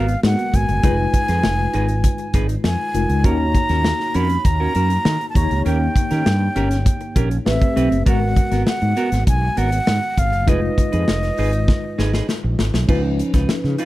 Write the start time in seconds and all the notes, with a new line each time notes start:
Already playing: G#1 G#3 B3 F#4 A#4 F5
0.08 muted clean electric guitar stroke, closed hi-hat
0.23 G#2 G#3 A#3 F#4 A#4 F#5, muted clean electric guitar stroke, snare
0.30 B3
0.38 muted clean electric guitar stroke, closed hi-hat
0.53 G#1 G#5, kick, closed hi-hat
0.69 F#1, muted clean electric guitar stroke, closed hi-hat
0.83 F1 G#3 D#4 F4 G#4 B4, kick, closed hi-hat
0.99 muted clean electric guitar stroke
1.14 muted clean electric guitar stroke, kick, closed hi-hat
1.28 F2 D#4 G#4 B4, snare, closed hi-hat
1.43 F1, snare
1.59 muted clean electric guitar stroke
1.73 G#1 D#4 G#4 B4, closed hi-hat
1.88 muted clean electric guitar stroke, closed hi-hat
2.04 kick, closed hi-hat
2.18 muted clean electric guitar stroke, closed hi-hat
2.34 G#1 D#4 G#4 B4, kick, closed hi-hat
2.49 muted clean electric guitar stroke, closed hi-hat
2.64 F2 G#5, muted clean electric guitar stroke, snare
2.79 muted clean electric guitar stroke
2.94 F1 G#3 D#4 F4 A#4, closed hi-hat
3.09 C#2, muted clean electric guitar stroke, closed hi-hat
3.23 D#2 A#3 C#4 D#4 F#4 A#4 C#5 A#5, kick, closed hi-hat
3.40 muted clean electric guitar stroke
3.54 muted clean electric guitar stroke, kick, closed hi-hat
3.69 D#2 C#4 F#4 A#4, snare, closed hi-hat
3.84 snare
4.00 muted clean electric guitar stroke, snare
4.14 F2 C#4 F#4 A#4 B5, closed hi-hat
4.30 muted clean electric guitar stroke, closed hi-hat
4.45 D#2 A#5, muted clean electric guitar stroke, kick, closed hi-hat
4.60 C#4 F#4 A#4
4.75 F#2 C#4 F#4 A#4, closed hi-hat
4.90 muted clean electric guitar stroke, closed hi-hat
5.05 D#3, snare
5.21 muted clean electric guitar stroke, closed hi-hat
5.30 A5
5.34 D#2 A#3 D#4 G4 C#5 A#5, kick, closed hi-hat
5.50 C#2, muted clean electric guitar stroke, closed hi-hat
5.65 D#2 C#4 G4 A#4 G5, closed hi-hat
5.81 muted clean electric guitar stroke
5.95 muted clean electric guitar stroke, kick, closed hi-hat
6.11 D#3 C#4 G4 A#4, snare, closed hi-hat
6.26 G2, snare
6.41 muted clean electric guitar stroke
6.56 G1 C#4 G4 A#4, closed hi-hat
6.71 muted clean electric guitar stroke, snare, closed hi-hat
6.86 kick, closed hi-hat
7.01 muted clean electric guitar stroke, closed hi-hat
7.16 A#1 C#4 G4 A#4, kick, closed hi-hat
7.31 muted clean electric guitar stroke, closed hi-hat
7.45 A1 A3 B3 G4 B4 E5, snare
7.52 C4
7.61 muted clean electric guitar stroke, kick, closed hi-hat
7.76 B1 C4 G4 B4, closed hi-hat
7.91 F#1, muted clean electric guitar stroke, closed hi-hat
8.05 G#1 G#3 B3 F#4 A#4 F#5, kick, closed hi-hat
8.22 muted clean electric guitar stroke
8.36 muted clean electric guitar stroke, kick, closed hi-hat
8.51 G#1 B3 F#4 A#4, snare, closed hi-hat
8.67 F#5, snare
8.82 G#2, muted clean electric guitar stroke, closed hi-hat
8.96 B3 F#4 A#4, closed hi-hat
9.12 G#1, muted clean electric guitar stroke, snare, closed hi-hat
9.27 B1 G#5, kick, closed hi-hat
9.42 muted clean electric guitar stroke
9.57 G#1 B3 F#4 A#4 F#5, closed hi-hat
9.72 muted clean electric guitar stroke, closed hi-hat
9.87 G#2, muted clean electric guitar stroke, snare
10.02 muted clean electric guitar stroke, closed hi-hat
10.18 G#1 F5, kick, closed hi-hat
10.32 F#1, muted clean electric guitar stroke, closed hi-hat
10.46 F1 G#3 D#4 F4 G#4 B4 D#5, kick, closed hi-hat
10.62 muted clean electric guitar stroke
10.77 muted clean electric guitar stroke, kick, closed hi-hat
10.92 F2 D#4 G#4 B4, closed hi-hat
11.08 F1, snare
11.23 muted clean electric guitar stroke, snare, closed hi-hat
11.38 G#1 D#4 G#4 B4, open hi-hat
11.53 muted clean electric guitar stroke, closed hi-hat
11.68 muted clean electric guitar stroke, kick, snare
11.84 muted clean electric guitar stroke
11.98 G#1 D#4 G#4 B4, snare
12.13 D#4 G#4 B4, snare
12.29 muted clean electric guitar stroke, snare
12.44 A#1, muted clean electric guitar stroke
12.59 G#1, snare
12.74 B1, muted clean electric guitar stroke, snare
12.87 C#2 F3 C#4 D#4 F4 B4, kick, crash
13.04 muted clean electric guitar stroke
13.19 muted clean electric guitar stroke, closed hi-hat
13.34 C#2 D#4 F4 B4, kick, snare, closed hi-hat
13.49 snare
13.64 C#3, muted clean electric guitar stroke, snare
13.78 D#4 F4 B4 F5, closed hi-hat